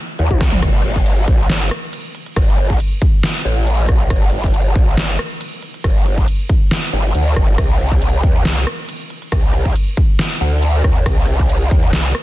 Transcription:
0.19 wobble bass D#2, closed hi-hat
0.31 wobble bass C2, kick, high tom
0.41 kick, cross-stick, snare, open hi-hat
0.52 closed hi-hat, mid tom
0.62 wobble bass G1, kick, cross-stick, closed hi-hat, crash, ride
0.84 wobble bass G1, closed hi-hat
0.96 kick
1.06 closed hi-hat, ride
1.28 wobble bass A#1, kick, open hi-hat
1.49 wobble bass G1, snare, closed hi-hat, ride
1.71 cross-stick, closed hi-hat
1.93 closed hi-hat, ride
2.15 closed hi-hat
2.26 closed hi-hat
2.36 wobble bass G1, kick, cross-stick, closed hi-hat, ride
2.58 closed hi-hat
2.70 kick
2.80 closed hi-hat, ride
3.02 kick, open hi-hat
3.23 snare, closed hi-hat, ride
3.45 wobble bass A1, closed hi-hat
3.67 closed hi-hat, ride
3.89 wobble bass A#1, kick, cross-stick, closed hi-hat
4.00 closed hi-hat
4.10 wobble bass G1, kick, cross-stick, closed hi-hat, ride
4.32 wobble bass G1, closed hi-hat
4.44 kick
4.54 closed hi-hat, ride
4.76 wobble bass A#1, kick, open hi-hat
4.97 wobble bass G1, snare, closed hi-hat, ride
5.19 cross-stick, closed hi-hat
5.41 closed hi-hat, ride
5.62 closed hi-hat
5.74 closed hi-hat
5.84 wobble bass G1, kick, cross-stick, closed hi-hat, ride
6.06 closed hi-hat
6.18 kick
6.28 closed hi-hat, ride
6.49 kick, open hi-hat
6.71 snare, closed hi-hat, ride
6.93 wobble bass G1, closed hi-hat
7.15 wobble bass D2, closed hi-hat, ride
7.36 wobble bass G1, kick, cross-stick, closed hi-hat
7.48 closed hi-hat
7.58 wobble bass C2, kick, cross-stick, closed hi-hat, ride
7.80 wobble bass C2, closed hi-hat
7.92 kick
8.02 closed hi-hat, ride
8.23 wobble bass D#2, kick, open hi-hat
8.45 wobble bass C2, snare, closed hi-hat, ride
8.67 cross-stick, closed hi-hat
8.89 closed hi-hat, ride
9.10 closed hi-hat
9.22 closed hi-hat
9.32 wobble bass C2, kick, cross-stick, closed hi-hat, ride
9.54 closed hi-hat
9.66 kick
9.76 closed hi-hat, ride
9.97 kick, open hi-hat
10.19 snare, closed hi-hat, ride
10.41 wobble bass D2, closed hi-hat
10.63 closed hi-hat, ride
10.84 wobble bass D#2, kick, cross-stick, closed hi-hat
10.96 closed hi-hat
11.06 wobble bass C2, kick, cross-stick, closed hi-hat, ride
11.28 wobble bass C2, closed hi-hat
11.39 kick
11.49 closed hi-hat, ride
11.71 wobble bass D#2, kick, open hi-hat
11.93 wobble bass C2, snare, closed hi-hat, ride
12.15 cross-stick, closed hi-hat

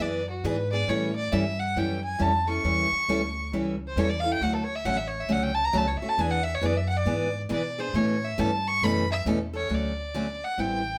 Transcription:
0.00 upright bass F#2, steel-string acoustic guitar E3 B3 D4 G#4, violin D5
0.30 violin F#4
0.44 upright bass G#2, steel-string acoustic guitar E3 B3 D4 G#4, violin B4
0.72 steel-string acoustic guitar B3 D4 G#4, violin D5
0.88 upright bass A2, steel-string acoustic guitar E3 G3 C#4 E4 A4, violin C#5
1.16 violin D5
1.32 upright bass G2, steel-string acoustic guitar E3 G3 C#4 E4 A4, violin E5
1.60 violin F#5
1.76 upright bass F#2, steel-string acoustic guitar E3 G3 C#4 E4 A4, violin G5
2.04 violin G#5
2.19 upright bass F2, steel-string acoustic guitar E3 G3 C#4 E4 A4, violin A5
2.48 steel-string acoustic guitar C#4 E4 A4, violin C#6
2.64 upright bass E2, steel-string acoustic guitar E3 G3 C#4 E4 A4
2.92 muted upright bass stroke
3.08 upright bass D2, steel-string acoustic guitar E3 G3 C#4 E4 A4
3.52 upright bass C#2, steel-string acoustic guitar E3 G3 C#4 E4 A4
3.88 violin C5
3.96 upright bass E2, steel-string acoustic guitar E3 G3 C#4 E4 A4, violin C#5
4.10 violin D5
4.20 steel-string acoustic guitar A4, violin F5
4.25 steel-string acoustic guitar C#4 E4
4.32 violin G5
4.41 upright bass D2, steel-string acoustic guitar D3 F#3 A3 C#4 F#4, violin F#5
4.53 violin A4
4.64 violin C#5
4.75 violin E5
4.85 upright bass A1, steel-string acoustic guitar D3 F#3 A3 C#4 F#4, violin F#5
4.97 violin E5
5.08 violin C#5
5.21 violin E5
5.29 upright bass C#2, steel-string acoustic guitar D3 F#3 A3 C#4 F#4, violin F#5
5.43 violin G5
5.55 violin A5
5.65 violin A#5
5.73 upright bass C#2, steel-string acoustic guitar D3 F#3 A3 C#4 F#4
5.77 violin A5
5.88 violin C#5
5.97 violin E5
6.02 steel-string acoustic guitar A3 C#4 F#4, muted upright bass stroke
6.09 violin A5
6.18 upright bass E2, steel-string acoustic guitar E3 B3 D4 G#4, violin G#5
6.31 violin F#5
6.43 violin E5
6.55 violin C#5
6.61 upright bass F#2, steel-string acoustic guitar E3 B3 D4 G#4, violin D5
6.77 violin E5
6.87 violin F#5
6.97 violin D5
7.06 upright bass G#2, steel-string acoustic guitar E3 B3 D4 G#4
7.49 upright bass B2, steel-string acoustic guitar E3 B3 D4 G#4, violin D5
7.78 steel-string acoustic guitar B3 D4 G#4, violin C5
7.93 upright bass A2, steel-string acoustic guitar B2 E3 A3 C#4 A4, violin C#5
8.25 violin E5
8.38 upright bass G2, steel-string acoustic guitar B2 E3 A3 C#4 A4, violin A5
8.67 violin C#6
8.81 upright bass F#2, steel-string acoustic guitar B2 E3 A3 C#4 A4, violin B5
9.12 violin E5
9.26 upright bass E2, steel-string acoustic guitar B2 E3 A3 C#4 A4
9.53 steel-string acoustic guitar A3 C#4 A4, violin C#5
9.69 upright bass D2, steel-string acoustic guitar D3 F#3 A3 C#4 F#4
9.74 violin D5
10.14 steel-string acoustic guitar D3 F#3 A3 C#4 F#4
10.44 violin F#5
10.58 upright bass A1, steel-string acoustic guitar E3 G3 C4 E4 A4, violin G5

